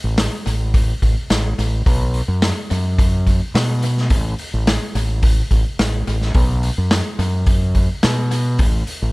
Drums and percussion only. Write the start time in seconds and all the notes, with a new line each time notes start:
0.18 snare, open hi-hat
0.47 open hi-hat
0.74 kick, open hi-hat
1.02 kick, open hi-hat
1.30 snare, open hi-hat
1.59 open hi-hat
1.86 kick, open hi-hat
2.14 open hi-hat
2.42 snare, open hi-hat
2.71 open hi-hat
2.99 kick, open hi-hat
3.27 kick, open hi-hat
3.55 snare, open hi-hat
3.82 open hi-hat
3.97 snare
4.10 kick, open hi-hat
4.39 open hi-hat
4.67 snare, open hi-hat
4.95 open hi-hat
5.23 kick, open hi-hat
5.51 kick, open hi-hat
5.79 snare, open hi-hat
6.07 open hi-hat
6.21 snare
6.34 kick, open hi-hat
6.63 open hi-hat
6.91 snare, open hi-hat
7.19 open hi-hat
7.46 kick, open hi-hat
7.75 kick, open hi-hat
8.03 snare, open hi-hat
8.31 open hi-hat
8.59 kick, open hi-hat
8.87 open hi-hat